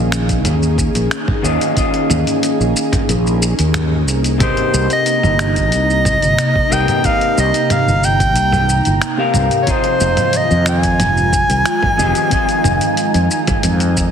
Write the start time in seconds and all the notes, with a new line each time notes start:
Already playing: A#1 D#3 A#3 C#4 D#4 F4 G#4 D#5
0.12 finger snap, shaker
0.29 kick, closed hi-hat, shaker
0.45 D#2, closed hi-hat, mid tom, shaker
0.63 shaker
0.78 kick, shaker
0.95 A#1, closed hi-hat, shaker
1.11 finger snap, closed hi-hat, shaker
1.28 kick, mid tom
1.42 D#2 D#3 C#4 F4 G#4 D#5, shaker
1.61 closed hi-hat, shaker
1.75 D#3 C#4 F4 G#4, kick, closed hi-hat, shaker
1.79 D#5
1.94 closed hi-hat
2.10 D#2, mid tom, shaker
2.27 closed hi-hat, shaker
2.43 closed hi-hat, shaker
2.60 A#1, shaker
2.77 shaker
2.93 kick, closed hi-hat, mid tom, shaker
3.09 A#1, closed hi-hat, shaker
3.27 shaker
3.42 shaker
3.59 D#2, closed hi-hat, shaker
3.74 finger snap, closed hi-hat, mid tom, shaker
4.08 C2, shaker
4.24 closed hi-hat, shaker
4.38 C3 C4 D#4 G4 A#4 D#5 A#5, kick, closed hi-hat, mid tom, shaker
4.43 C5
4.57 closed hi-hat
4.74 C2, shaker
4.90 D#5, closed hi-hat, shaker
5.06 closed hi-hat, shaker
5.23 G1, mid tom, shaker
5.39 D#5, finger snap, shaker
5.56 kick, closed hi-hat, shaker
5.72 C2, closed hi-hat, shaker
5.90 shaker
6.05 kick, mid tom, shaker
6.22 G1, closed hi-hat, shaker
6.39 finger snap, closed hi-hat, shaker
6.56 kick
6.70 C2 C3 C4 G4 A#4 D#5 G5, shaker
6.88 closed hi-hat, mid tom, shaker
7.02 C3 C4 G4 A#4 D#5 F5, kick, closed hi-hat, shaker
7.21 closed hi-hat
7.38 C2 D#5, shaker
7.54 closed hi-hat, shaker
7.70 F5, closed hi-hat, mid tom, shaker
7.87 G1, shaker
8.04 G5, shaker
8.20 kick, closed hi-hat, shaker
8.36 C2, closed hi-hat, shaker
8.52 mid tom, shaker
8.69 shaker
8.85 G1, closed hi-hat, shaker
9.02 finger snap, closed hi-hat, shaker
9.17 C3 C4 G4 A#4 F5
9.34 C2, mid tom, shaker
9.51 closed hi-hat, shaker
9.62 F3 C#5
9.67 D#3 G#3 C4 F4 G#4 D#5, kick, closed hi-hat, shaker
9.71 C5
9.84 closed hi-hat
10.00 F1, shaker
10.17 closed hi-hat, mid tom, shaker
10.33 D#5, closed hi-hat, shaker
10.51 F2, shaker
10.66 G#5, finger snap, shaker
10.83 kick, closed hi-hat, shaker
10.99 F1, closed hi-hat, mid tom, shaker
11.17 shaker
11.33 kick, shaker
11.49 C2, closed hi-hat, shaker
11.66 finger snap, closed hi-hat, shaker
11.83 kick, mid tom
11.97 F1 F3 C4 G4 G#4 D#5, shaker
12.15 closed hi-hat, shaker
12.29 F3 C4 D#4 F4 G#4, kick, closed hi-hat, shaker
12.33 D#5
12.49 closed hi-hat, shaker
12.64 F1, mid tom, shaker
12.81 closed hi-hat, shaker
12.97 closed hi-hat, shaker
13.14 F2, closed hi-hat, shaker
13.31 shaker
13.47 kick, closed hi-hat, mid tom, shaker
13.63 F2, closed hi-hat, shaker
13.80 closed hi-hat, shaker
13.97 kick, shaker